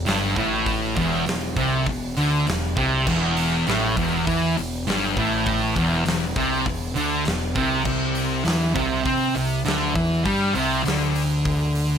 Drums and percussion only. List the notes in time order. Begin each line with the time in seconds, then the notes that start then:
0.06 snare, open hi-hat
0.36 kick, open hi-hat
0.66 kick, open hi-hat
0.96 kick, open hi-hat
1.26 snare, open hi-hat
1.57 kick, open hi-hat
1.86 kick, open hi-hat
2.17 open hi-hat
2.47 snare, open hi-hat
2.77 kick, open hi-hat
3.07 kick, crash
3.37 open hi-hat
3.67 snare, open hi-hat
3.97 kick, open hi-hat
4.27 kick, open hi-hat
4.57 open hi-hat
4.87 snare, open hi-hat
5.17 kick, open hi-hat
5.46 kick, open hi-hat
5.76 kick, open hi-hat
6.06 snare, open hi-hat
6.36 kick, open hi-hat
6.66 kick, open hi-hat
6.96 open hi-hat
7.25 snare, open hi-hat
7.55 kick, open hi-hat
7.85 kick, crash
8.15 open hi-hat
8.45 snare, open hi-hat
8.76 kick, open hi-hat
9.06 kick, open hi-hat
9.35 open hi-hat
9.66 snare, open hi-hat
9.96 kick, open hi-hat
10.26 kick, open hi-hat
10.55 open hi-hat
10.86 snare, open hi-hat
11.15 open hi-hat
11.45 kick, open hi-hat
11.75 open hi-hat